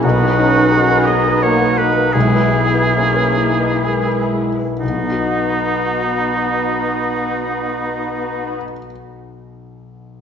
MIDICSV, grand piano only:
0, 0, Header, 1, 2, 480
1, 0, Start_track
1, 0, Key_signature, 5, "major"
1, 0, Tempo, 677201
1, 28, Time_signature, 3, 2, 24, 8
1, 509, Tempo, 714286
1, 1469, Tempo, 777202
1, 1949, Tempo, 890208
1, 2429, Tempo, 1003344
1, 2909, Tempo, 907716
1, 5761, End_track
2, 0, Start_track
2, 0, Title_t, "Grand piano"
2, 0, Program_c, 0, 0
2, 0, Control_c, 0, 64, 127
2, 34, Note_on_c, 0, 35, 52
2, 41, Control_c, 0, 64, 0
2, 161, Note_on_c, 0, 71, 42
2, 179, Control_c, 0, 64, 127
2, 277, Note_on_c, 0, 63, 40
2, 345, Note_off_c, 0, 71, 0
2, 409, Note_on_c, 0, 71, 42
2, 465, Note_off_c, 0, 63, 0
2, 534, Note_on_c, 0, 66, 42
2, 590, Note_off_c, 0, 71, 0
2, 637, Note_on_c, 0, 71, 38
2, 711, Note_off_c, 0, 66, 0
2, 764, Note_on_c, 0, 63, 32
2, 823, Note_off_c, 0, 71, 0
2, 876, Note_on_c, 0, 71, 36
2, 947, Note_off_c, 0, 63, 0
2, 993, Note_on_c, 0, 70, 32
2, 1062, Note_off_c, 0, 71, 0
2, 1102, Note_on_c, 0, 71, 37
2, 1109, Note_off_c, 0, 70, 0
2, 1223, Note_on_c, 0, 63, 33
2, 1296, Note_off_c, 0, 71, 0
2, 1348, Note_on_c, 0, 71, 34
2, 1418, Note_off_c, 0, 63, 0
2, 1444, Note_off_c, 0, 35, 0
2, 1470, Note_off_c, 0, 71, 0
2, 1470, Note_on_c, 0, 35, 45
2, 1483, Control_c, 0, 64, 0
2, 1589, Control_c, 0, 64, 127
2, 1592, Note_on_c, 0, 71, 36
2, 1713, Note_on_c, 0, 64, 33
2, 1778, Note_off_c, 0, 71, 0
2, 1837, Note_on_c, 0, 71, 32
2, 1904, Note_off_c, 0, 64, 0
2, 1957, Note_on_c, 0, 64, 32
2, 2022, Note_off_c, 0, 71, 0
2, 2073, Note_on_c, 0, 71, 35
2, 2137, Note_off_c, 0, 64, 0
2, 2190, Note_on_c, 0, 64, 27
2, 2258, Note_off_c, 0, 71, 0
2, 2310, Note_on_c, 0, 71, 28
2, 2382, Note_off_c, 0, 64, 0
2, 2448, Note_on_c, 0, 70, 20
2, 2502, Note_off_c, 0, 71, 0
2, 2555, Note_on_c, 0, 71, 27
2, 2556, Note_off_c, 0, 70, 0
2, 2676, Note_on_c, 0, 64, 24
2, 2752, Note_off_c, 0, 71, 0
2, 2800, Note_on_c, 0, 71, 18
2, 2867, Note_off_c, 0, 64, 0
2, 2890, Note_off_c, 0, 35, 0
2, 2910, Note_off_c, 0, 71, 0
2, 2915, Note_on_c, 0, 35, 21
2, 2924, Control_c, 0, 64, 0
2, 2949, Note_on_c, 0, 47, 26
2, 2988, Note_on_c, 0, 59, 23
2, 3027, Note_on_c, 0, 63, 23
2, 3045, Control_c, 0, 64, 127
2, 3067, Note_on_c, 0, 66, 23
2, 3101, Note_on_c, 0, 75, 24
2, 4892, Note_off_c, 0, 35, 0
2, 4927, Note_off_c, 0, 47, 0
2, 4965, Note_off_c, 0, 59, 0
2, 5005, Note_off_c, 0, 63, 0
2, 5044, Note_off_c, 0, 66, 0
2, 5078, Note_off_c, 0, 75, 0
2, 5761, End_track
0, 0, End_of_file